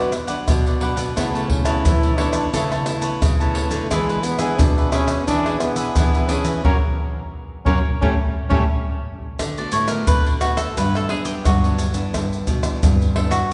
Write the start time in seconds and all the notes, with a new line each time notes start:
Already playing: B2 F#3 B3 D4 F#4 F#5
0.00 B4 D5
0.12 muted cavaquinho stroke, pandeiro, tamborim, maracas
0.27 F#3 B3 D4 B4 D5 F#5, pandeiro, maracas
0.48 F#2 B2, pandeiro, tamborim, maracas, surdo
0.66 B4 D5 F#5, pandeiro, maracas
0.80 F#3 B3 D4 B4 D5 F#5, pandeiro
0.96 B2 B4 D5 F#5, pandeiro, maracas
1.16 C#3 A3 B3 E4 A4 B4 C#5 A5, pandeiro, tamborim, maracas, surdo
1.34 A3 B3 E4 B4 C#5 A5, pandeiro, maracas
1.49 C#4, muted cavaquinho stroke, pandeiro, surdo
1.65 C#3 A3 B3 E4 B4 C#5 A5, pandeiro, tamborim, maracas
1.85 E3 E4, pandeiro, maracas, surdo
2.03 B4 C#5 A5, pandeiro, maracas
2.17 A3 B3 D4 E4 A4 B4 C#5 A5, pandeiro, tamborim
2.33 B4 C#5 A5, pandeiro, tamborim, maracas
2.53 C#3 A3 B3 E4 A4 B4 C#5 A5, pandeiro, maracas, surdo
2.72 B4 C#5 A5, pandeiro, tamborim, maracas
2.86 A3 B3 E4, muted cavaquinho stroke, pandeiro, tamborim, maracas
3.02 B4 C#5 A5, pandeiro, maracas
3.22 C#3, pandeiro, tamborim, maracas, surdo
3.40 A3 B3 E4 B4 C#5 A5, pandeiro, maracas
3.54 A4 B4 C#5 A5, pandeiro
3.69 D3 B4 C#5 A5, pandeiro, maracas
3.84 A3
3.90 E3 G#3 B3 D4 G#4 B4 E5, pandeiro, tamborim, maracas, surdo
4.08 G#4 B4 E5, pandeiro, maracas
4.23 B3, muted cavaquinho stroke, pandeiro, maracas
4.38 E3 B3 D4 G#4 B4 E5, pandeiro, tamborim, maracas
4.58 B2 D4, pandeiro, maracas, surdo
4.78 G#4 B4 E5, pandeiro, maracas
4.92 B3 C#4 D4 G#4 B4 E5, pandeiro, tamborim, maracas
5.08 G#4 B4 E5, pandeiro, tamborim, maracas
5.27 E3 D4 G#4 B4 E5, pandeiro, maracas, surdo
5.46 B3 D4 G#4 B4 E5, pandeiro, tamborim, maracas
5.59 B3, muted cavaquinho stroke, pandeiro, tamborim, maracas
5.76 G#4 B4 E5, pandeiro, maracas
5.96 B2 E3 B3 D4 G#4, pandeiro, tamborim, maracas, surdo
6.14 G#4 B4 E5, pandeiro, maracas
6.29 B3 C#4 D4 G#4 B4 E5, pandeiro, maracas
6.44 E3 G#4 B4 E5, pandeiro, maracas
6.64 F#2 F#3 A#3 C#4 F#4 A#4 C#5, surdo
7.65 F#2 F#3 A#3 C#4 F#4 A#4 C#5, surdo
8.01 A2 G3 A3 C#4 G4 A4 C#5, surdo
8.50 A2 G3 A3 C#4 G4 A4 C#5, surdo
9.39 D3, pandeiro, tamborim, maracas, surdo
9.57 A3 B3 F#4 D5, pandeiro, maracas
9.72 A2 C#5, pandeiro, maracas
9.88 A3 B3 F#4 A#4, pandeiro, tamborim, maracas
10.07 A2 D3 B4, pandeiro, maracas, surdo
10.26 D4, pandeiro, maracas
10.41 A3 B3 F#4, pandeiro, tamborim, maracas
10.57 A4, pandeiro, tamborim, maracas
10.77 G2 F#3 B3 D4 B4, pandeiro, maracas, surdo
10.95 A4, pandeiro, tamborim, maracas
11.09 F#3 B3 D4 G#4, pandeiro, tamborim
11.25 G4, pandeiro, maracas
11.45 G2 D3 F#4, pandeiro, tamborim, maracas, surdo
11.64 F#3 B3 D4, pandeiro, maracas
11.79 pandeiro, maracas
11.94 E3 B3 D4, pandeiro, maracas
12.14 G2, pandeiro, tamborim, maracas, surdo
12.33 pandeiro, maracas
12.47 B2, pandeiro, maracas, surdo
12.63 E3 B3 D4, pandeiro, tamborim, maracas
12.83 G2, pandeiro, maracas, surdo
13.02 pandeiro, maracas
13.16 E3 B3 D4 A4, pandeiro, tamborim
13.31 F#4, pandeiro, tamborim, maracas